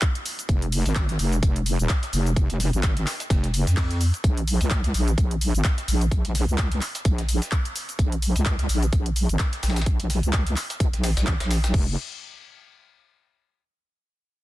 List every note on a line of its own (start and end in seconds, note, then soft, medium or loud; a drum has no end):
0.00 kick loud
0.00 clap loud
0.00 closed hi-hat medium
0.00 downlifter medium
0.00 cabasa soft
0.15 closed hi-hat medium
0.25 open hi-hat medium
0.25 tambourine medium
0.25 cabasa medium
0.39 closed hi-hat soft
0.39 cabasa soft
0.49 0.83 F1 medium
0.49 kick loud
0.49 closed hi-hat medium
0.49 tambourine medium
0.49 cabasa soft
0.62 closed hi-hat soft
0.72 open hi-hat loud
0.72 tambourine medium
0.72 cabasa medium
0.85 1.17 G#1 medium
0.85 closed hi-hat soft
0.85 cabasa soft
0.95 kick loud
0.95 snare loud
0.95 clap loud
0.95 closed hi-hat medium
0.95 tambourine medium
0.95 cabasa soft
1.09 snare soft
1.09 closed hi-hat medium
1.19 1.41 F1 loud
1.19 open hi-hat medium
1.19 tambourine medium
1.19 cabasa medium
1.32 closed hi-hat soft
1.32 cabasa soft
1.43 1.77 F1 loud
1.43 kick loud
1.43 closed hi-hat medium
1.43 tambourine medium
1.43 cabasa soft
1.56 closed hi-hat soft
1.66 open hi-hat loud
1.66 tambourine medium
1.66 cabasa medium
1.79 1.88 D#1 loud
1.79 closed hi-hat soft
1.79 cabasa soft
1.89 kick loud
1.89 snare loud
1.89 clap loud
1.89 closed hi-hat medium
1.89 tambourine medium
1.89 cabasa soft
2.03 closed hi-hat soft
2.03 closed hi-hat medium
2.13 2.47 F1 medium
2.13 open hi-hat medium
2.13 tambourine medium
2.13 cabasa medium
2.26 closed hi-hat soft
2.26 cabasa soft
2.36 kick loud
2.36 closed hi-hat medium
2.36 tambourine medium
2.36 cabasa soft
2.50 2.71 F1 loud
2.50 closed hi-hat soft
2.60 snare soft
2.60 open hi-hat loud
2.60 tambourine medium
2.60 cabasa medium
2.73 3.05 G#1 medium
2.73 closed hi-hat soft
2.73 cabasa soft
2.83 kick loud
2.83 snare loud
2.83 clap loud
2.83 closed hi-hat medium
2.83 tambourine medium
2.83 cabasa soft
2.97 closed hi-hat soft
3.07 snare loud
3.07 clap soft
3.07 open hi-hat medium
3.07 tambourine medium
3.07 cabasa medium
3.20 closed hi-hat soft
3.20 cabasa soft
3.30 3.65 F1 loud
3.30 kick loud
3.30 snare loud
3.30 closed hi-hat medium
3.30 tambourine medium
3.30 cabasa soft
3.44 snare soft
3.44 closed hi-hat soft
3.54 open hi-hat loud
3.54 tambourine medium
3.54 cabasa medium
3.67 4.12 F2 loud
3.67 snare medium
3.67 closed hi-hat soft
3.67 cabasa soft
3.77 kick loud
3.77 snare loud
3.77 clap loud
3.77 closed hi-hat medium
3.77 open hi-hat medium
3.77 cabasa soft
3.91 closed hi-hat medium
4.01 open hi-hat medium
4.01 tambourine medium
4.01 cabasa medium
4.14 closed hi-hat soft
4.14 cabasa soft
4.24 4.59 A#1 medium
4.24 kick loud
4.24 closed hi-hat medium
4.24 tambourine medium
4.24 cabasa soft
4.37 closed hi-hat soft
4.47 open hi-hat loud
4.47 tambourine medium
4.47 cabasa medium
4.61 4.93 C#2 loud
4.61 closed hi-hat soft
4.61 cabasa soft
4.71 kick loud
4.71 snare loud
4.71 clap loud
4.71 closed hi-hat medium
4.71 tambourine medium
4.71 cabasa soft
4.84 snare soft
4.84 closed hi-hat soft
4.94 5.16 A#1 loud
4.94 open hi-hat medium
4.94 tambourine medium
4.94 cabasa medium
5.08 closed hi-hat soft
5.08 cabasa soft
5.18 5.52 A#1 loud
5.18 kick loud
5.18 closed hi-hat medium
5.18 tambourine medium
5.18 cabasa soft
5.31 closed hi-hat soft
5.41 open hi-hat loud
5.41 tambourine medium
5.41 cabasa medium
5.54 5.63 G#1 medium
5.54 closed hi-hat soft
5.54 cabasa soft
5.64 kick loud
5.64 snare loud
5.64 clap loud
5.64 closed hi-hat medium
5.64 tambourine medium
5.64 cabasa soft
5.78 closed hi-hat soft
5.78 closed hi-hat medium
5.88 6.22 A#1 medium
5.88 open hi-hat medium
5.88 tambourine medium
5.88 cabasa medium
6.01 closed hi-hat soft
6.01 cabasa soft
6.11 kick loud
6.11 closed hi-hat medium
6.11 tambourine medium
6.11 cabasa soft
6.25 6.46 A#1 loud
6.25 closed hi-hat medium
6.25 closed hi-hat soft
6.35 snare soft
6.35 open hi-hat loud
6.35 tambourine medium
6.35 cabasa medium
6.48 6.80 C#2 loud
6.48 cabasa soft
6.58 kick loud
6.58 snare loud
6.58 clap loud
6.58 closed hi-hat medium
6.58 tambourine medium
6.58 cabasa soft
6.72 closed hi-hat medium
6.72 closed hi-hat soft
6.81 clap soft
6.81 open hi-hat medium
6.81 tambourine medium
6.81 cabasa medium
6.95 closed hi-hat soft
6.95 cabasa soft
7.05 7.40 A#1 loud
7.05 kick loud
7.05 closed hi-hat medium
7.05 tambourine medium
7.05 cabasa soft
7.18 snare soft
7.18 closed hi-hat soft
7.29 open hi-hat loud
7.29 tambourine medium
7.29 cabasa medium
7.42 snare medium
7.42 closed hi-hat soft
7.42 cabasa soft
7.52 kick loud
7.52 clap loud
7.52 closed hi-hat medium
7.52 cabasa soft
7.65 closed hi-hat medium
7.76 open hi-hat medium
7.76 tambourine medium
7.76 cabasa medium
7.89 closed hi-hat soft
7.89 cabasa soft
7.99 8.33 A#1 loud
7.99 kick loud
7.99 closed hi-hat medium
7.99 tambourine medium
7.99 cabasa soft
8.12 closed hi-hat medium
8.22 open hi-hat loud
8.22 tambourine medium
8.22 cabasa medium
8.36 8.68 C#2 loud
8.36 closed hi-hat soft
8.36 cabasa soft
8.46 kick loud
8.46 snare loud
8.46 clap loud
8.46 closed hi-hat medium
8.46 tambourine medium
8.46 cabasa soft
8.59 snare soft
8.59 closed hi-hat medium
8.69 8.91 A#1 loud
8.69 open hi-hat medium
8.69 tambourine medium
8.69 cabasa medium
8.83 closed hi-hat soft
8.83 cabasa soft
8.93 9.27 A#1 loud
8.93 kick loud
8.93 closed hi-hat medium
8.93 tambourine medium
8.93 cabasa soft
9.06 closed hi-hat medium
9.16 open hi-hat loud
9.16 tambourine medium
9.16 cabasa medium
9.29 9.38 G#1 loud
9.29 closed hi-hat soft
9.29 cabasa soft
9.39 kick loud
9.39 snare loud
9.39 clap loud
9.39 closed hi-hat medium
9.39 tambourine medium
9.39 cabasa soft
9.53 closed hi-hat medium
9.53 closed hi-hat soft
9.63 9.98 A#1 medium
9.63 snare medium
9.63 open hi-hat medium
9.63 tambourine medium
9.63 cabasa medium
9.70 snare medium
9.70 tambourine medium
9.76 snare medium
9.76 closed hi-hat soft
9.76 tambourine medium
9.76 cabasa soft
9.81 snare medium
9.81 tambourine medium
9.86 kick loud
9.86 closed hi-hat medium
9.86 cabasa soft
10.00 10.21 A#1 loud
10.00 closed hi-hat medium
10.00 closed hi-hat soft
10.10 snare soft
10.10 open hi-hat loud
10.10 tambourine medium
10.10 cabasa medium
10.23 10.55 C#2 loud
10.23 closed hi-hat soft
10.23 cabasa soft
10.33 kick loud
10.33 snare loud
10.33 clap loud
10.33 closed hi-hat medium
10.33 tambourine medium
10.33 cabasa soft
10.47 closed hi-hat medium
10.47 closed hi-hat soft
10.56 clap soft
10.56 open hi-hat medium
10.56 tambourine medium
10.56 cabasa medium
10.70 closed hi-hat soft
10.70 cabasa soft
10.80 10.91 C#2 loud
10.80 kick loud
10.80 closed hi-hat medium
10.80 tambourine medium
10.80 cabasa soft
10.93 11.15 A#1 loud
10.93 snare soft
10.93 closed hi-hat medium
11.04 snare loud
11.04 open hi-hat loud
11.04 tambourine medium
11.04 cabasa medium
11.17 11.38 A#1 loud
11.17 snare loud
11.17 closed hi-hat soft
11.17 tambourine medium
11.17 cabasa soft
11.27 kick loud
11.27 snare loud
11.27 clap loud
11.27 closed hi-hat medium
11.27 tambourine medium
11.27 cabasa soft
11.40 11.72 A#1 loud
11.40 snare loud
11.40 closed hi-hat medium
11.40 tambourine medium
11.51 snare loud
11.51 open hi-hat medium
11.51 tambourine medium
11.51 cabasa medium
11.64 snare loud
11.64 closed hi-hat soft
11.64 tambourine medium
11.64 cabasa soft
11.74 11.96 F1 medium
11.74 kick loud
11.74 crash medium